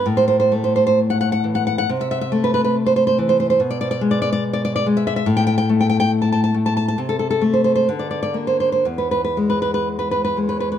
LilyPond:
\new Staff \with { instrumentName = "Nylon-string guitar" } { \time 2/4 \key a \dorian \tempo 4 = 68 << { r32 c''32 c''32 c''32 r32 c''32 c''32 c''32 r32 fis''32 fis''32 fis''32 r32 fis''32 fis''32 fis''32 | r32 e''32 e''32 e''32 r32 b'32 b'32 b'32 r32 c''32 c''32 c''32 r32 c''32 c''32 c''32 | \key e \phrygian r32 d''32 d''32 d''32 r32 d''32 d''32 d''32 r32 d''32 d''32 d''32 r32 e''32 e''32 e''32 | r32 g''32 g''32 g''32 r32 g''32 g''32 g''32 r32 a''32 a''32 a''32 r32 a''32 a''32 a''32 |
r32 a'32 a'32 a'32 r32 c''32 c''32 c''32 r32 d''32 d''32 d''32 r32 c''32 c''32 c''32 | r32 b'32 b'32 b'32 r32 b'32 b'32 b'32 r32 b'32 b'32 b'32 r32 b'32 b'32 b'32 | } \\ { a,8 a4 e8 | c8 a4 e8 | b,8 gis4 gis8 | a,8 a4 a8 |
c8 a8 d8 bes8 | e,8 gis4 gis8 | } >> }